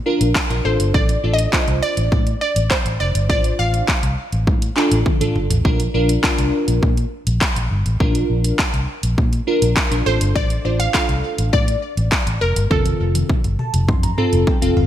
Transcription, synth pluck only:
0.65 0.95 C5 medium
0.94 1.35 D5 medium
1.33 1.79 D#5 medium
1.83 2.40 D5 medium
2.41 2.69 D5 loud
2.71 3.01 C5 medium
3.00 3.28 D5 loud
3.29 3.60 D5 loud
3.59 4.73 F5 loud
10.06 10.34 C5 loud
10.36 10.72 D5 loud
10.80 10.93 F5 loud
10.94 11.55 F5 loud
11.53 12.44 D5 loud
12.41 12.72 A#4 medium
12.71 14.43 A4 medium

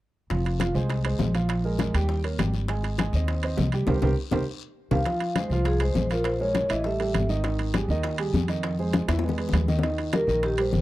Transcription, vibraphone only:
4.92 5.38 F5 medium
5.36 5.64 C5 medium
5.66 5.80 G#4 medium
5.81 6.12 C5 medium
6.12 6.27 A#4 medium
6.25 6.39 C5 medium
6.40 6.68 C#5 medium
6.71 6.86 D#5 medium
6.86 7.27 E5 medium
9.70 10.15 D#5 medium
10.15 10.42 A#4 medium
10.44 10.59 G4 medium
10.60 10.81 C5 medium

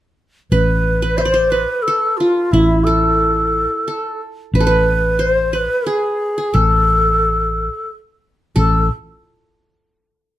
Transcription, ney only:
0.52 1.19 B4 medium
1.18 1.52 C5 medium
1.18 1.22 E5 medium
1.51 1.84 B4 medium
1.83 2.19 A4 medium
2.17 2.53 F4 medium
2.52 2.86 E4 medium
2.84 4.19 A4 medium
4.56 5.23 B4 medium
5.21 5.57 C5 medium
5.55 5.90 B4 medium
5.88 6.56 G#4 medium
6.54 7.89 A4 medium
8.56 8.88 A4 medium

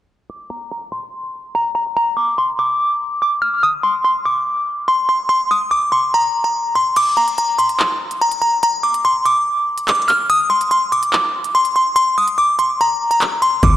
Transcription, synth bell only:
0.30 0.49 D6 loud
0.50 0.70 A#5 medium
0.71 0.91 A#5 medium
0.92 1.51 C6 medium
1.55 1.74 A#5 medium
1.75 1.95 A#5 medium
1.97 2.16 A#5 loud
2.17 2.37 D6 medium
2.38 2.58 C6 medium
2.59 3.18 D6 medium
3.22 3.41 D6 medium
3.42 3.62 F6 medium
3.63 3.83 D#6 loud
3.83 4.03 C6 medium
4.04 4.24 C6 medium
4.25 4.84 D6 medium
4.88 5.08 C6 medium
5.09 5.28 C6 medium
5.29 5.49 C6 loud
5.51 5.70 D#6 medium
5.71 5.91 D6 medium
5.92 6.12 C6 medium
6.14 6.43 A#5 medium
6.44 6.74 A#5 medium
6.75 6.95 C6 medium
6.97 7.16 D6 loud
7.17 7.37 A#5 medium
7.38 7.58 A#5 medium
7.59 8.17 C6 medium
8.21 8.40 A#5 medium
8.42 8.62 A#5 medium
8.63 8.83 A#5 loud
8.83 9.03 D6 medium
9.05 9.24 C6 medium
9.25 9.84 D6 medium
9.88 10.08 D6 medium
10.08 10.28 F6 medium
10.30 10.49 D#6 loud
10.50 10.70 C6 medium
10.71 10.91 C6 medium
10.92 11.51 D6 medium
11.55 11.74 C6 medium
11.76 11.95 C6 medium
11.96 12.16 C6 loud
12.18 12.37 D#6 medium
12.38 12.58 D6 medium
12.59 12.78 C6 medium
12.81 13.10 A#5 medium
13.11 13.40 A#5 medium
13.42 13.62 C6 medium
13.63 13.77 D6 loud

